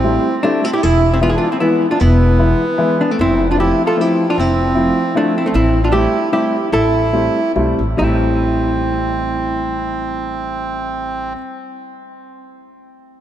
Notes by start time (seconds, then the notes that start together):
Already playing: A1 C4 E4
0.04 G3 A3 C4 E4
0.42 G3 A3 C4 D4 E4
0.64 C4 E4
0.73 E4 G4
0.83 E1 E4 G#4
1.11 C4 E4
1.21 E3 G#3 B3 E4 F4
1.27 E4 G#4
1.34 D4 F4
1.49 C4 E4
1.53 C4
1.60 E3 G#3 B3 E4
1.90 D4 F4
2.00 E1 B3 E4
2.39 E3 G#3 B3 E4
2.78 E3 G#3 B3 E4
3.01 B3 D4
3.11 A3 C4
3.19 F1 C4 E4
3.49 D4 F4
3.58 F3 A3 C4 E4 G4
3.85 F4 A4
3.96 F3 A3 C4 E4
4.01 E4 G4
4.29 D4 F4
4.36 F1 C4
4.40 E4
4.75 F3 A3 C4 E4
5.15 F3 A3 C4 D4 E4
5.37 C4 E4
5.46 A3 C4
5.54 A1 C4 E4
5.84 D4 F4
5.92 G3 A3 C4 E4 G4
6.32 G3 A3 C4 E4 G4
6.72 A1 E4 A4
7.13 G3 A3 C4 E4
7.56 B1 G3 A3 C4 E4
7.79 A1
7.97 A1 G3 A3 C4 E4
8.01 E4